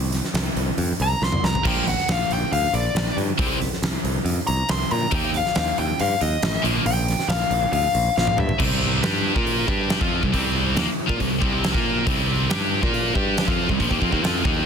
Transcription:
Already playing: C2
0.12 snare, open hi-hat
0.24 snare
0.34 C2, snare, open hi-hat
0.56 C2, open hi-hat
0.78 F2, open hi-hat
1.00 C2 A#5, open hi-hat
1.22 C2 C6, snare
1.32 mid tom
1.44 C2 A#5, snare
1.55 floor tom
1.65 A#1 A#2 F3 A#3 G5, kick, crash
1.87 F#5, snare, open hi-hat
1.99 snare
2.08 A#1 F5, snare, open hi-hat
2.30 A#1 G5, open hi-hat
2.52 D2 F5, open hi-hat
2.73 A#1 D5, open hi-hat
2.95 A#1, snare, open hi-hat
3.17 G2, open hi-hat
3.38 C2 C3 G3 C4, kick, open hi-hat
3.62 snare, open hi-hat
3.73 snare
3.82 C2, snare, open hi-hat
4.04 C2, open hi-hat
4.25 F2, open hi-hat
4.47 C2 A#5, open hi-hat
4.69 C2 C6, snare, open hi-hat
4.91 A#2 A#5, open hi-hat
5.11 D#2 D#3 A#3 D#4 G5, kick, open hi-hat
5.34 F5, snare, open hi-hat
5.46 snare
5.55 D#2 F5, snare, open hi-hat
5.78 D#2 G5, open hi-hat
6.00 G2 F5, open hi-hat
6.21 D#2 D#5, open hi-hat
6.42 A1, snare, open hi-hat
6.62 A#1 A#2 F3 A#3, open hi-hat
6.86 A#1 G5, open hi-hat
7.08 snare, open hi-hat
7.19 snare
7.28 A#1 F5, snare, open hi-hat
7.51 A#1, open hi-hat
7.72 D2 F5, open hi-hat
7.95 A#1, open hi-hat
8.17 A#1 F5, snare
8.27 high tom
8.37 G2 E5, mid tom
8.49 floor tom
8.58 C2 C3 G3 C4, kick, crash
9.02 G2 G3 D4 G4, snare, open hi-hat
9.35 A#2 A#3 F4 A#4, kick
9.47 open hi-hat
9.68 G2 G3 D4 G4, kick
9.90 snare, open hi-hat
10.00 F2 F3 C4 F4, kick
10.22 C2 C3 G3, kick
10.33 C2 C3 G3 C4, kick, open hi-hat
10.75 D#2 D#3 A#3, snare, open hi-hat
10.86 muted picked electric bass stroke, muted distorted electric guitar stroke
11.06 A#2 A#3 F4, kick
11.17 C2 C3 G3, kick, open hi-hat
11.38 C2 C3 G3 C4, kick
11.64 snare, open hi-hat
11.73 A#2 A#3 F4 A#4, kick
12.05 C2 C3 G3 C4, kick, open hi-hat
12.50 G2 G3 D4 G4, snare, open hi-hat
12.82 A#2 A#3 F4 A#4, kick
12.94 open hi-hat
13.14 G2 G3 D4 G4, kick
13.37 snare, open hi-hat
13.47 F2 F3 C4 F4, kick
13.69 C2 C3 G3, kick
13.80 A#1 A#2 F3, kick, open hi-hat
13.90 D#2 D#3 A#3, kick
14.01 F2 F3 C4, kick
14.12 D#2 D#3 A#3, kick
14.23 F2 F3 C4 F4, snare, open hi-hat
14.44 D#2 D#3 A#3 D#4, kick

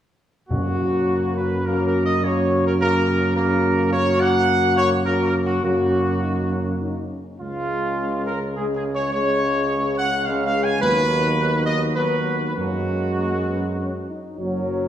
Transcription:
0.49 F#2 C#3 A#3 C#4 F#4
1.37 B4
1.66 C#3 A#3 C#4 F#4 A#4
1.86 A#4
2.06 D#5
2.23 C#3 A#3 C#4 F#4 C#5
2.67 A#4
2.79 C#3 A#3 C#4 F#4 A#4
3.36 C#3 A#3 C#4 F#4 A#4
3.92 C#3 A#3 C#4 F#4 C#5
4.20 F#5
4.77 C#5
5.05 C#3 A#3 C#4 F#4 A#4
5.26 A#4
5.45 F#4
5.62 F#2 C#3 A#3 C#4 F#4
6.22 D#4
6.52 C#4
6.80 D#4
7.11 C#4
7.41 C#2 C#3 G#3 C#4 F4 G#4
8.26 A#4
8.56 C#3 G#3 C#4 G#4
8.75 G#4
8.94 C#5
9.13 C#3 G#3 C#4 G#4 C#5
9.97 F#5
10.24 C#3 G#3 C#4 G#4 F5
10.45 F5
10.63 G#5
10.81 D#2 F#3 B3 D#4 B4
11.66 D#5
11.95 F#3 B3 D#4 B4
12.56 F#2 F#3 G#3 A#3 C#4 F#4
13.19 A#3
13.49 B3
13.78 C#4
14.09 D#4
14.39 F#1 F#3 A#4 C#5

